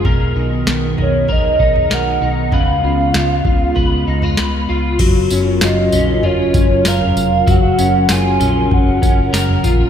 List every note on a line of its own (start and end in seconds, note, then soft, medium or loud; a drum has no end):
0.00 1.08 F#3 medium
0.00 0.11 C#4 medium
0.00 0.11 F4 medium
0.00 2.49 G#4 medium
0.04 0.32 B1 medium
0.04 2.52 B2 medium
0.04 2.50 D#3 medium
0.04 4.96 B3 medium
0.04 2.50 A#4 medium
0.04 1.28 A#4 medium
0.04 kick medium
0.04 floor tom medium
0.35 0.63 B1 medium
0.35 0.96 D#4 medium
0.67 0.94 B1 medium
0.67 2.87 B3 medium
0.67 snare loud
0.97 1.26 B1 medium
0.97 1.58 D#4 medium
0.97 floor tom medium
1.02 1.34 C#5 medium
1.28 1.56 B1 medium
1.28 1.89 A#4 medium
1.28 1.95 D#5 loud
1.28 kick medium
1.28 floor tom soft
1.59 1.87 B1 medium
1.59 2.20 D#4 medium
1.59 kick medium
1.76 floor tom medium
1.90 2.18 B1 medium
1.90 2.52 A#4 medium
1.90 2.56 F#5 loud
1.90 snare loud
2.22 2.52 B1 medium
2.22 2.59 D#4 medium
2.51 2.80 C#2 medium
2.51 4.97 C#3 medium
2.51 5.00 C#3 medium
2.51 4.97 G#3 medium
2.51 4.97 F4 medium
2.51 3.74 B4 medium
2.51 4.39 F5 loud
2.51 kick medium
2.51 floor tom medium
2.84 3.11 C#2 medium
2.84 3.45 F4 medium
3.14 3.42 C#2 loud
3.14 5.06 B3 medium
3.14 snare loud
3.45 3.73 C#2 medium
3.45 4.07 F4 medium
3.45 kick medium
3.45 floor tom medium
3.76 4.04 C#2 medium
3.76 4.37 B4 medium
3.76 kick medium
3.76 floor tom medium
4.07 4.35 C#2 medium
4.07 4.23 D#4 medium
4.22 4.68 F4 soft
4.22 floor tom medium
4.37 4.66 C#2 medium
4.37 5.06 B4 medium
4.37 snare loud
4.69 4.97 C#2 medium
4.69 5.62 F4 medium
4.99 5.27 F#1 medium
4.99 9.90 C#3 medium
4.99 9.90 F#3 medium
4.99 7.47 F#3 loud
4.99 7.44 F4 medium
4.99 9.90 A#4 medium
4.99 kick loud
4.99 floor tom medium
4.99 crash medium
4.99 tambourine soft
5.30 5.58 F#1 loud
5.30 5.93 C#4 medium
5.30 tambourine medium
5.61 5.90 F#1 loud
5.61 6.23 F4 medium
5.61 6.27 D#5 medium
5.61 snare loud
5.61 tambourine loud
5.92 6.24 A#1 medium
5.92 6.54 C#4 medium
5.92 floor tom medium
5.92 tambourine medium
6.23 6.51 F#1 loud
6.23 7.50 F4 medium
6.23 6.90 C#5 loud
6.23 floor tom medium
6.54 6.82 F#1 loud
6.54 7.78 C#4 medium
6.54 kick medium
6.54 tambourine medium
6.85 7.13 F#1 loud
6.85 9.32 A#4 medium
6.85 7.52 F5 loud
6.85 snare loud
6.85 tambourine loud
7.01 floor tom medium
7.16 7.43 F1 medium
7.16 floor tom medium
7.16 tambourine medium
7.46 7.75 F#1 loud
7.46 9.90 F#3 medium
7.46 9.90 C#4 medium
7.46 kick loud
7.46 floor tom medium
7.46 tambourine soft
7.50 8.14 F#5 loud
7.78 8.06 F#1 loud
7.78 8.39 C#4 medium
7.78 tambourine medium
8.09 8.37 F#1 loud
8.09 9.63 F4 medium
8.09 8.73 G#5 loud
8.09 snare loud
8.09 tambourine loud
8.40 8.67 A#1 medium
8.40 9.02 C#4 medium
8.40 floor tom medium
8.40 tambourine medium
8.71 8.99 F#1 loud
8.71 9.61 F#5 loud
8.71 kick medium
8.71 floor tom medium
9.02 9.30 F#1 medium
9.02 9.90 C#4 medium
9.02 kick medium
9.02 tambourine medium
9.33 9.60 F#1 loud
9.33 9.90 A#4 medium
9.33 snare loud
9.33 tambourine loud
9.49 floor tom medium
9.64 9.90 A#1 medium
9.64 9.90 F4 medium
9.64 kick loud
9.64 floor tom medium
9.64 tambourine medium